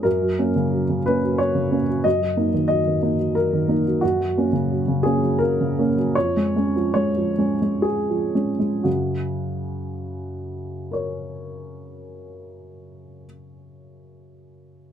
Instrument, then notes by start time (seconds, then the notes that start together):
upright piano
0.03 F#2 A#4
0.22 F#3
0.39 A#3 C#4
0.56 C#3
0.73 F#3
0.89 C#3
1.06 A#3 C#4 B4
1.23 F#3
1.38 C#5
1.55 C#3
1.71 A#3 C#4
1.88 F#3
2.04 F#2 D#5
2.21 F#3
2.37 A#3 D#4
2.54 D#3
2.68 F#3 D#5
2.87 D#3
3.02 A#3 D#4
3.19 F#3
3.35 A#4
3.53 D#3
3.68 A#3 D#4
3.87 F#3
4.01 F#2 F#4
4.21 F#3
4.37 A#3 C#4
4.53 C#3
4.71 F#3
4.88 C#3
5.03 A#3 C#4 G#4
5.22 F#3
5.38 A#4
5.61 C#3
5.79 A#3 C#4
5.97 F#3
6.15 F2 C#5
6.37 G#3
6.56 G#3 C#4
6.76 F3
6.94 G#3 C#5
7.17 F3
7.38 G#3 C#4
7.62 G#3
7.82 G#4
8.10 F3
8.35 G#3 C#4
8.59 G#3
8.83 F#2 C#3 F#4
10.91 A#4 C#5